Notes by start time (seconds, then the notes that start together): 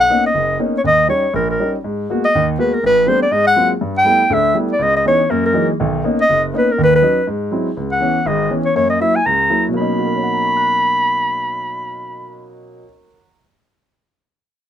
0.00 F#5
0.10 A#3 B3 C#4 D#4
0.26 D#5
0.34 F#1
0.59 A#3 B3 C#4 D#4
0.78 C#5
0.84 D#2 D#5
1.09 G3 C#4 D#4 C#5
1.34 A#1 A#4
1.51 A#4
1.60 G3 C#4 D#4
1.84 G#2
2.10 G#3 A#3 B3 F#4
2.25 D#5
2.35 D#2 D#3
2.59 G#3 A#3 B3 F#4 B4
2.74 A#4
2.83 A1 B4
3.06 G3 A3 B3 C4 D4 C5
3.23 D5
3.31 G#2 D#5
3.47 F#5
3.56 F#3 G#3 A#3 C4 F4
3.81 G2
3.98 G5
4.04 G3 A3 B3 E4
4.30 D2 D3 E5
4.54 G3 A3 B3 E4
4.72 D5
4.79 C#2 D#5
4.96 D#5
5.06 E3 B3 C#4 D#4 C#5
5.30 F#2 A#3 A#4
5.46 A#4
5.53 E3 F#3 G#3 A#3 D#4
5.80 B1 D#3
6.04 A#3 B3 C#4 D#4
6.21 D#5
6.30 F#1
6.54 A#3 B3 C#4 D#4
6.58 B4
6.72 A#4
6.78 D#2 D#3
6.83 B4
6.96 B4
7.02 F#3 C#4 D#4
7.27 G#2
7.51 F#3 G#3 C4 E4
7.77 C#2
7.92 F#5
8.00 E3 B3 C#4
8.26 G#1 G#2 D#5
8.50 E3 B3 C#4
8.65 C#5
8.76 F#2 A#3 C#5
8.90 D#5
9.00 F#3 A#3 E4 E5
9.16 G#5
9.26 C#2 A#5
9.50 F#3 A#3 E4
9.68 B2 F#3
9.74 A#3 C#4 B5
9.81 D#4
9.99 F#4
10.06 A#4
10.15 C#5
10.23 F#5
10.34 A#5
10.45 C#6
10.57 F#6